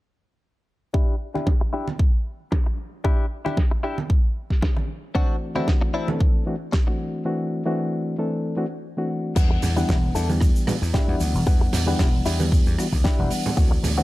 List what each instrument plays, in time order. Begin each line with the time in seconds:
0.94 clean electric guitar D4 E4 G4, kick
1.34 clean electric guitar D4 E4 G4, high conga
1.47 kick, snare
1.61 muted clean electric guitar stroke
1.73 clean electric guitar D4 E4 G4
1.88 high conga
1.99 muted clean electric guitar stroke, kick
2.52 muted clean electric guitar stroke, kick, snare
2.66 muted clean electric guitar stroke
3.04 clean electric guitar D4 E4 G4, kick
3.45 clean electric guitar D4 E4 G4, high conga
3.57 kick, snare
3.71 muted clean electric guitar stroke
3.83 clean electric guitar D4 E4 G4
3.98 high conga
4.10 muted clean electric guitar stroke, kick
4.50 kick, snare
4.62 muted clean electric guitar stroke, kick, snare
4.77 muted clean electric guitar stroke, high conga
5.15 reed electric piano E3 A3 C4 D4 F#4, clean electric guitar C4 D4 F#4, kick
5.55 reed electric piano E3 A3 C4 D4 F#4, clean electric guitar C4 D4 E4, high conga
5.68 kick, snare
5.81 muted clean electric guitar stroke
5.94 clean electric guitar C4 D4 E4
6.08 reed electric piano E3 A3 C4 D4 A4, high conga
6.20 muted clean electric guitar stroke, kick
6.46 reed electric piano E3 A3 C4 D4 F#4
6.72 muted clean electric guitar stroke, kick, snare
6.87 reed electric piano E3 A3 C4 D4 F#4, muted clean electric guitar stroke
7.25 reed electric piano E3 A3 C4 D4 F#4
7.66 reed electric piano E3 A3 C4 D4 F#4
8.18 reed electric piano E3 A3 C4 D4 A4
8.57 reed electric piano E3 A3 C4 D4 F#4
8.97 reed electric piano E3 A3 C4 D4 F#4
9.36 slap bass E2, reed electric piano E3 G3 B3 D4 F#5, muted clean electric guitar stroke, kick, crash, shaker
9.50 muted clean electric guitar stroke
9.62 slap bass E2, muted clean electric guitar stroke, open hi-hat, low conga, shaker
9.76 reed electric piano E3 G3 B3 D4 F#5, clean electric guitar D4 E4 G4, high conga, shaker
9.89 slap bass E1, kick, snare, shaker
10.15 slap bass E2, clean electric guitar D4 E4 A4, open hi-hat, shaker
10.29 reed electric piano E3 G3 B3 D4 G4, high conga, shaker
10.41 muted clean electric guitar stroke, kick, cross-stick, shaker
10.56 shaker
10.67 reed electric piano E3 G3 B3 D4 F#4, cross-stick, open hi-hat, low conga, shaker
10.82 slap bass E2, muted clean electric guitar stroke, shaker
10.94 clean electric guitar D4 E4 G4, kick, snare, low conga, shaker
11.08 slap bass E2, reed electric piano E3 G3 B3 D4 F#5
11.20 slap bass D2, open hi-hat, shaker
11.35 slap bass E1, shaker
11.46 slap bass E2, reed electric piano E3 G3 B3 D4 F#5, muted clean electric guitar stroke, kick, shaker
11.61 muted clean electric guitar stroke
11.73 slap bass E2, muted clean electric guitar stroke, snare, open hi-hat, low conga, shaker
11.87 reed electric piano E3 G3 B3 D4 F#5, clean electric guitar D4 E4 G4, high conga, shaker
11.99 slap bass E1, kick, snare, shaker
12.25 slap bass E2, clean electric guitar D4 E4 G4, open hi-hat, shaker
12.40 reed electric piano E3 G3 B3 D4 G4, high conga, shaker
12.52 muted clean electric guitar stroke, kick, shaker
12.66 slap bass E2, shaker
12.78 reed electric piano E3 G3 B3 D4 F#4, cross-stick, open hi-hat, shaker
12.92 slap bass D2, muted clean electric guitar stroke, kick, shaker
13.04 clean electric guitar D4 E4 G4, kick, snare, shaker
13.19 slap bass E1, reed electric piano E3 G3 B3 D4 F#5
13.31 open hi-hat, shaker
13.46 low conga, shaker
13.57 slap bass D2, reed electric piano E3 A3 C4 D4 F#4, muted clean electric guitar stroke, kick, shaker
13.71 muted clean electric guitar stroke
13.84 slap bass D2, muted clean electric guitar stroke, open hi-hat, low conga, shaker
13.97 reed electric piano E3 A3 C4 D4 F#4, clean electric guitar C4 D4 F#4, high conga, shaker